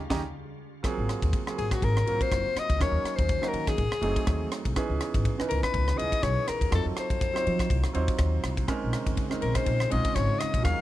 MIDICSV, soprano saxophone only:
0, 0, Header, 1, 2, 480
1, 0, Start_track
1, 0, Tempo, 490597
1, 820, Time_signature, 4, 2, 24, 8
1, 10577, End_track
2, 0, Start_track
2, 0, Title_t, "Soprano saxophone"
2, 0, Program_c, 0, 64
2, 1549, Note_on_c, 0, 68, 78
2, 1696, Note_on_c, 0, 66, 77
2, 1710, Note_off_c, 0, 68, 0
2, 1798, Note_on_c, 0, 70, 85
2, 1813, Note_off_c, 0, 66, 0
2, 2177, Note_on_c, 0, 72, 91
2, 2192, Note_off_c, 0, 70, 0
2, 2535, Note_on_c, 0, 75, 90
2, 2550, Note_off_c, 0, 72, 0
2, 2753, Note_off_c, 0, 75, 0
2, 2759, Note_on_c, 0, 73, 90
2, 3092, Note_on_c, 0, 72, 80
2, 3107, Note_off_c, 0, 73, 0
2, 3407, Note_on_c, 0, 70, 84
2, 3421, Note_off_c, 0, 72, 0
2, 3603, Note_on_c, 0, 68, 86
2, 3618, Note_off_c, 0, 70, 0
2, 4424, Note_off_c, 0, 68, 0
2, 5370, Note_on_c, 0, 70, 80
2, 5498, Note_off_c, 0, 70, 0
2, 5512, Note_on_c, 0, 71, 90
2, 5849, Note_on_c, 0, 75, 94
2, 5864, Note_off_c, 0, 71, 0
2, 6095, Note_on_c, 0, 73, 104
2, 6110, Note_off_c, 0, 75, 0
2, 6346, Note_on_c, 0, 70, 84
2, 6360, Note_off_c, 0, 73, 0
2, 6583, Note_off_c, 0, 70, 0
2, 6605, Note_on_c, 0, 69, 79
2, 6707, Note_off_c, 0, 69, 0
2, 6845, Note_on_c, 0, 72, 90
2, 7754, Note_off_c, 0, 72, 0
2, 9215, Note_on_c, 0, 70, 69
2, 9348, Note_on_c, 0, 72, 79
2, 9362, Note_off_c, 0, 70, 0
2, 9703, Note_on_c, 0, 75, 81
2, 9717, Note_off_c, 0, 72, 0
2, 9936, Note_on_c, 0, 73, 88
2, 9950, Note_off_c, 0, 75, 0
2, 10166, Note_on_c, 0, 75, 78
2, 10181, Note_off_c, 0, 73, 0
2, 10408, Note_off_c, 0, 75, 0
2, 10414, Note_on_c, 0, 77, 90
2, 10577, Note_off_c, 0, 77, 0
2, 10577, End_track
0, 0, End_of_file